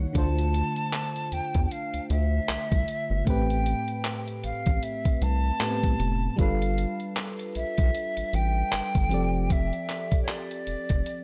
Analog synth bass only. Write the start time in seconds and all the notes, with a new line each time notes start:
0.15 D2
1.32 E2
1.55 E2
1.94 D2
2.10 D2
2.49 C2
2.72 C2
3.10 G1
3.27 A1
4.44 A1
4.67 A1
5.05 C2
5.22 C2
5.84 C2
5.99 F1
6.39 G1
7.56 B1
7.78 B1
8.17 A1
8.33 A1
8.73 G1
8.95 G1
9.12 F1
10.67 F1
10.90 F1